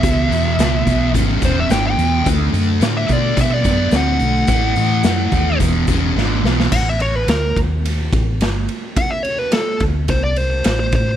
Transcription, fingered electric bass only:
\new Staff \with { instrumentName = "Fingered electric bass" } { \clef bass \time 4/4 \key e \mixolydian \tempo 4 = 107 cis,8 e,8 cis,8 b,,8 gis,,8 e,,8 gis,,8 e,8 | d,8 fis,8 a,8 b,8 b,8 fis,8 d,8 b,,8 | a,,8 a,8 fis,8 dis,8 e,,8 e,,8 gis,,8 b,,8 | a,,4 d,8 dis,4 a,,8 g,,8 r8 |
r4. d,8 c,4 a,,8 a,8 | }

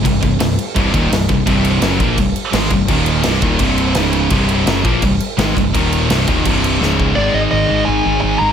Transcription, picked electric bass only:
\new Staff \with { instrumentName = "Picked electric bass" } { \clef bass \time 4/4 \key c \minor \tempo 4 = 168 c,,8 c,,8 c,,8 r8 c,,8 ees,,8 c,,8 c,,8 | c,,4 fis,,8 bes,,8 c,,8 r8 aes,,8 c,,8 | ees,,4 c,,8 ees,,8 c,,4 des,,4 | c,,4 fis,,8 bes,,8 c,,8 r8 aes,,8 c,,8 |
ees,,4 c,,8 ees,,8 c,,4 des,,4 | aes,,8 aes,,8 aes,,8 aes,,8 aes,,8 aes,,8 aes,,8 aes,,8 | }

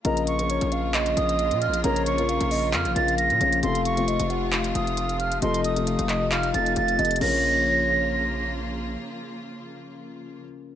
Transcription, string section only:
\new Staff \with { instrumentName = "String section" } { \time 4/4 \key bes \minor \tempo 4 = 134 << { f'1~ | f'1 | f'1 | ees'1 |
<des f bes f'>1~ | <des f bes f'>1 | } \\ { <des f bes>1~ | <des f bes>1 | <c f a>1~ | <c f a>1 |
r1 | r1 | } >> }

